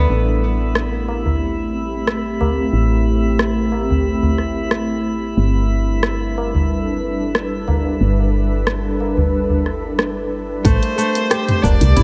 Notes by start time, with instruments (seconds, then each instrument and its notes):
Already playing: kora A3 B3 D4 E4
0.08 fm bass A1, ambient pad A3 C4 G4, synth texture E4 E5
0.26 tabla na
0.75 cross-stick
0.92 tabla tin
1.08 tabla na, tabla tin
1.25 tabla na, tabla tin, tabla ge
2.07 cross-stick
2.41 tabla na, tabla ge
2.57 tabla tin
2.73 fm bass A1
2.91 tabla na
3.39 cross-stick
3.55 tabla tin
3.72 tabla na, tabla tin
3.90 tabla tin, tabla ge
4.23 tabla na, tabla ge
4.38 cross-stick
4.56 tabla tin
4.71 cross-stick
4.90 tabla tin
5.37 fm bass G1, ambient pad G3 D4 A4 B4
5.54 tabla na
6.03 cross-stick
6.21 tabla tin
6.36 tabla na, tabla tin
6.54 tabla na, tabla tin, tabla ge
7.35 cross-stick
7.68 tabla na, tabla ge
7.85 tabla tin
8.01 fm bass G1
8.19 tabla na
8.67 cross-stick
8.84 tabla tin
9.00 tabla na, tabla tin
9.17 tabla tin, tabla ge
9.50 tabla na, tabla ge
9.66 cross-stick
9.84 tabla tin
9.99 cross-stick
10.17 tabla tin
10.65 fm bass A1, ambient pad A3 C4 G4, kora A3, kamancheh C5, kick, closed hi-hat, cabasa
10.83 closed hi-hat, tabla na
10.98 kora A3, cabasa
11.15 closed hi-hat, tabla tin, cabasa
11.30 kora G4, cross-stick, closed hi-hat, cabasa
11.48 closed hi-hat, mid tom
11.62 fm bass E1, kora D4, kamancheh D5, kick, tabla na, tabla tin, cabasa
11.80 fm bass C2, closed hi-hat, tabla na, tabla ge, cabasa
11.96 fm bass A1, kora E4, closed hi-hat, mid tom, cabasa